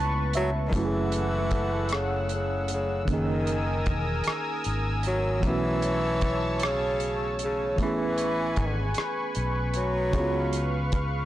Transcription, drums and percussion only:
0.33 closed hi-hat
0.73 kick, closed hi-hat
1.12 closed hi-hat
1.51 kick, closed hi-hat
1.89 cross-stick, closed hi-hat
2.29 closed hi-hat
2.68 closed hi-hat
3.08 kick, closed hi-hat
3.47 closed hi-hat
3.86 kick, closed hi-hat
4.24 cross-stick, closed hi-hat
4.64 closed hi-hat
5.03 closed hi-hat
5.43 kick, closed hi-hat
5.82 closed hi-hat
6.21 kick, closed hi-hat
6.60 cross-stick, closed hi-hat
7.00 closed hi-hat
7.39 closed hi-hat
7.78 kick, closed hi-hat
8.18 closed hi-hat
8.56 kick, closed hi-hat
8.94 cross-stick, closed hi-hat
9.35 closed hi-hat
9.74 closed hi-hat
10.13 kick, closed hi-hat
10.53 closed hi-hat
10.92 kick, closed hi-hat

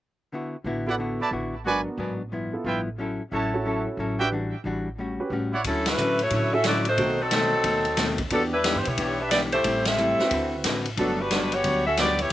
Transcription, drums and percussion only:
5.64 kick, ride
5.86 snare, ride
5.97 hi-hat pedal
6.19 ride
6.30 kick, ride
6.64 snare, hi-hat pedal, ride
6.85 ride
6.98 kick, ride
7.31 snare, hi-hat pedal, ride
7.64 kick, ride
7.85 ride
7.97 snare, hi-hat pedal, ride
8.18 kick, ride
8.30 kick, ride
8.64 snare, hi-hat pedal, ride
8.85 ride
8.98 kick, ride
9.31 snare, hi-hat pedal, ride
9.52 ride
9.64 kick, ride
9.85 snare, ride
9.98 hi-hat pedal
10.19 snare
10.31 kick, ride
10.64 snare, hi-hat pedal, ride
10.85 ride
10.97 kick, ride
11.31 snare, hi-hat pedal, ride
11.52 ride
11.64 kick, ride
11.97 snare, hi-hat pedal, ride
12.19 ride

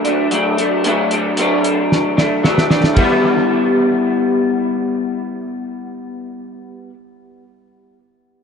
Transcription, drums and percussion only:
0.05 closed hi-hat
0.31 closed hi-hat
0.58 closed hi-hat
0.84 closed hi-hat
1.11 closed hi-hat
1.37 closed hi-hat
1.64 closed hi-hat
1.92 snare
2.18 snare
2.44 snare
2.58 snare
2.70 snare
2.84 snare
2.97 kick, ride

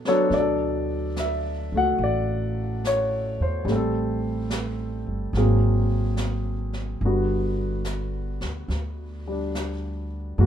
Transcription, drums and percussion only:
0.05 snare
0.31 brush sweep, snare
1.16 snare, hi-hat pedal
2.00 brush sweep
2.84 snare, hi-hat pedal
3.68 brush sweep, snare
4.50 snare, hi-hat pedal
5.34 brush sweep, snare
6.17 snare, hi-hat pedal
6.73 snare
7.01 brush sweep
7.85 snare, hi-hat pedal
8.41 snare
8.70 brush sweep, snare
9.55 snare, hi-hat pedal
10.38 brush sweep

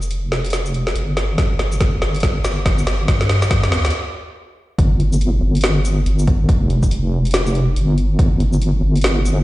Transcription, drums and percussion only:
0.02 shaker
0.11 closed hi-hat
0.32 snare
0.45 closed hi-hat
0.46 closed hi-hat
0.50 snare, closed hi-hat
0.53 closed hi-hat, shaker
0.66 shaker
0.74 closed hi-hat
0.87 snare
0.96 closed hi-hat
1.17 snare, closed hi-hat
1.38 kick, snare, closed hi-hat
1.59 snare, closed hi-hat
1.72 shaker
1.81 kick, snare, closed hi-hat
2.02 snare
2.15 closed hi-hat
2.20 kick, snare, closed hi-hat
2.23 closed hi-hat
2.44 snare, closed hi-hat, shaker
2.66 kick, snare, closed hi-hat
2.78 shaker
2.87 snare, closed hi-hat
3.08 kick, snare, closed hi-hat
3.21 snare
3.29 snare, closed hi-hat
3.42 snare, shaker
3.51 kick, snare, closed hi-hat
3.63 snare
3.72 snare
3.85 snare, closed hi-hat
3.86 closed hi-hat
3.90 closed hi-hat
4.79 kick, closed hi-hat
5.00 closed hi-hat
5.13 shaker
5.21 closed hi-hat
5.55 closed hi-hat
5.57 closed hi-hat
5.61 snare, closed hi-hat
5.64 closed hi-hat
5.85 closed hi-hat, shaker
6.06 closed hi-hat
6.19 shaker
6.27 kick, closed hi-hat
6.49 kick, closed hi-hat
6.70 closed hi-hat
6.83 kick, shaker
6.91 closed hi-hat
7.25 closed hi-hat
7.31 snare, closed hi-hat
7.34 closed hi-hat, shaker
7.47 shaker
7.55 closed hi-hat
7.76 closed hi-hat
7.98 closed hi-hat
8.19 kick, closed hi-hat
8.40 closed hi-hat
8.53 shaker
8.62 closed hi-hat
8.96 closed hi-hat
8.97 closed hi-hat
9.01 snare, closed hi-hat
9.04 closed hi-hat
9.25 closed hi-hat, shaker

